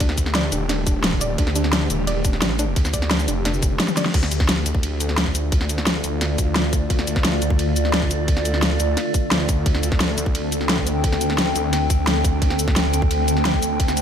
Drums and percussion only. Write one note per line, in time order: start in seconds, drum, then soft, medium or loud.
0.00 kick loud
0.00 closed hi-hat medium
0.00 ride bell medium
0.09 snare soft
0.18 kick medium
0.18 closed hi-hat medium
0.18 ride bell medium
0.18 cabasa medium
0.26 snare soft
0.35 snare loud
0.35 closed hi-hat medium
0.35 ride bell medium
0.52 closed hi-hat medium
0.52 ride bell medium
0.52 cabasa medium
0.69 snare medium
0.69 closed hi-hat medium
0.69 ride bell medium
0.87 kick loud
0.87 closed hi-hat medium
0.87 ride bell medium
0.87 cabasa medium
1.04 snare loud
1.04 closed hi-hat medium
1.04 ride bell medium
1.12 kick medium
1.21 closed hi-hat medium
1.21 ride bell medium
1.21 cabasa medium
1.38 kick loud
1.38 closed hi-hat medium
1.38 ride bell medium
1.47 snare soft
1.56 closed hi-hat loud
1.56 ride bell medium
1.56 cabasa medium
1.64 snare soft
1.73 snare loud
1.73 closed hi-hat medium
1.73 ride bell medium
1.90 closed hi-hat loud
1.90 ride bell medium
1.90 cabasa medium
2.07 closed hi-hat medium
2.07 ride bell medium
2.25 kick loud
2.25 closed hi-hat medium
2.25 ride bell medium
2.25 cabasa medium
2.33 snare soft
2.42 snare loud
2.42 closed hi-hat medium
2.42 ride bell medium
2.59 closed hi-hat loud
2.59 ride bell medium
2.59 cabasa medium
2.76 kick loud
2.76 closed hi-hat medium
2.76 ride bell medium
2.85 snare medium
2.85 cabasa soft
2.94 kick medium
2.94 closed hi-hat loud
2.94 ride bell medium
2.94 cabasa medium
3.02 snare soft
3.11 snare loud
3.11 closed hi-hat medium
3.11 ride bell medium
3.19 cabasa soft
3.28 closed hi-hat loud
3.28 ride bell medium
3.28 cabasa medium
3.45 snare medium
3.45 closed hi-hat medium
3.45 ride bell medium
3.54 cabasa soft
3.62 kick loud
3.62 closed hi-hat loud
3.62 ride bell medium
3.62 cabasa medium
3.80 snare loud
3.80 closed hi-hat medium
3.80 ride bell medium
3.88 snare soft
3.88 high tom medium
3.88 cabasa soft
3.97 snare medium
3.97 closed hi-hat loud
3.97 ride bell medium
3.97 cabasa medium
4.06 snare medium
4.14 kick loud
4.14 closed hi-hat medium
4.14 crash loud
4.14 ride bell medium
4.23 snare medium
4.31 closed hi-hat loud
4.31 ride bell soft
4.31 cabasa medium
4.40 kick loud
4.40 snare medium
4.49 snare loud
4.49 closed hi-hat medium
4.49 ride bell medium
4.66 closed hi-hat loud
4.66 ride bell soft
4.66 cabasa medium
4.75 kick loud
4.83 closed hi-hat medium
4.83 ride bell medium
5.00 closed hi-hat loud
5.00 ride bell medium
5.00 cabasa medium
5.09 snare soft
5.18 snare loud
5.18 closed hi-hat medium
5.18 ride bell medium
5.26 kick medium
5.35 closed hi-hat loud
5.35 ride bell soft
5.35 cabasa medium
5.52 kick loud
5.52 closed hi-hat medium
5.52 ride bell medium
5.61 snare medium
5.69 closed hi-hat medium
5.69 ride bell medium
5.69 cabasa medium
5.78 snare medium
5.87 snare loud
5.87 closed hi-hat medium
5.87 ride bell medium
6.04 closed hi-hat loud
6.04 ride bell medium
6.04 cabasa medium
6.21 snare medium
6.21 closed hi-hat medium
6.21 ride bell medium
6.38 kick loud
6.38 closed hi-hat medium
6.38 ride bell soft
6.38 cabasa medium
6.56 snare loud
6.56 closed hi-hat medium
6.56 ride bell medium
6.73 kick loud
6.73 closed hi-hat loud
6.73 ride bell medium
6.73 cabasa medium
6.90 kick loud
6.90 closed hi-hat medium
6.90 ride bell medium
6.99 snare medium
7.07 closed hi-hat medium
7.07 ride bell medium
7.07 cabasa medium
7.16 kick loud
7.16 snare soft
7.25 snare loud
7.25 closed hi-hat medium
7.25 ride bell medium
7.42 closed hi-hat medium
7.42 ride bell medium
7.42 cabasa medium
7.50 kick loud
7.59 closed hi-hat medium
7.59 ride bell medium
7.76 closed hi-hat medium
7.76 ride bell medium
7.76 cabasa medium
7.85 snare soft
7.94 snare loud
7.94 closed hi-hat medium
7.94 ride bell medium
8.02 kick medium
8.11 closed hi-hat medium
8.11 ride bell medium
8.11 cabasa medium
8.28 kick loud
8.28 closed hi-hat medium
8.28 ride bell medium
8.37 snare soft
8.45 closed hi-hat medium
8.45 ride bell medium
8.45 cabasa medium
8.54 snare soft
8.62 snare loud
8.62 closed hi-hat medium
8.62 ride bell medium
8.80 closed hi-hat medium
8.80 ride bell medium
8.80 cabasa medium
8.97 snare medium
8.97 closed hi-hat medium
8.97 ride bell medium
9.14 kick loud
9.14 closed hi-hat medium
9.14 ride bell medium
9.14 cabasa medium
9.31 snare loud
9.31 closed hi-hat medium
9.31 ride bell medium
9.49 kick loud
9.49 closed hi-hat medium
9.49 ride bell medium
9.49 cabasa medium
9.66 kick loud
9.66 closed hi-hat medium
9.66 ride bell medium
9.75 snare soft
9.83 closed hi-hat medium
9.83 ride bell medium
9.83 cabasa medium
9.92 kick loud
9.92 snare soft
10.00 snare loud
10.00 closed hi-hat medium
10.00 ride bell medium
10.18 closed hi-hat medium
10.18 ride bell medium
10.18 cabasa medium
10.26 kick loud
10.35 closed hi-hat medium
10.35 ride bell medium
10.52 closed hi-hat medium
10.52 ride bell medium
10.52 cabasa medium
10.61 snare soft
10.69 snare loud
10.69 closed hi-hat medium
10.69 ride bell medium
10.78 kick medium
10.87 closed hi-hat medium
10.87 ride bell medium
10.87 cabasa medium
11.04 kick loud
11.04 closed hi-hat medium
11.04 ride bell medium
11.12 snare soft
11.21 closed hi-hat medium
11.21 ride bell medium
11.21 cabasa medium
11.30 snare soft
11.38 snare loud
11.38 closed hi-hat medium
11.38 ride bell medium
11.56 closed hi-hat loud
11.56 ride bell medium
11.56 cabasa medium
11.73 snare medium
11.73 closed hi-hat medium
11.73 ride bell medium
11.90 kick loud
11.90 closed hi-hat medium
11.90 ride bell medium
11.90 cabasa medium
12.07 snare loud
12.07 closed hi-hat medium
12.07 ride bell medium
12.25 kick loud
12.25 closed hi-hat medium
12.25 ride bell medium
12.25 cabasa medium
12.42 kick loud
12.42 closed hi-hat medium
12.42 ride bell medium
12.50 snare soft
12.59 closed hi-hat loud
12.59 ride bell medium
12.59 cabasa medium
12.68 kick loud
12.68 snare soft
12.76 snare loud
12.76 closed hi-hat medium
12.76 ride bell medium
12.94 closed hi-hat loud
12.94 ride bell medium
12.94 cabasa medium
13.02 kick loud
13.11 closed hi-hat medium
13.11 ride bell medium
13.28 closed hi-hat loud
13.28 ride bell medium
13.28 cabasa medium
13.37 snare soft
13.45 snare loud
13.45 closed hi-hat medium
13.45 ride bell medium
13.54 kick medium
13.62 closed hi-hat medium
13.62 ride bell medium
13.62 cabasa medium
13.80 kick loud
13.80 closed hi-hat medium
13.80 ride bell medium
13.88 snare medium
13.88 cabasa soft
13.97 closed hi-hat loud
13.97 ride bell medium
13.97 cabasa medium